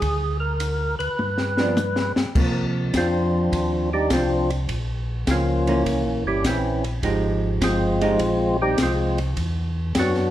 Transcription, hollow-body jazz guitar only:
1.59 F3 B3 D4
2.36 F3 A#3
5.67 E3 A#3 C#4
7.03 F3 G#3 D#4 G4
8.01 F3 G#3 D#4 G4

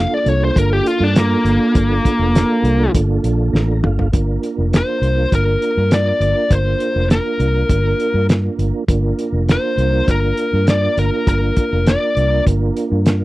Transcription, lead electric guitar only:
0.00 F5
0.14 D5
0.28 C#5
0.44 C5
0.58 A#4
0.73 G4
0.87 F4
1.04 D4
1.18 A#3
4.77 C5
5.35 A#4
5.94 D5
6.52 C5
7.11 A#4
9.51 C5
10.11 A#4
10.70 D5
10.99 A#4
11.29 A#4
11.88 D5

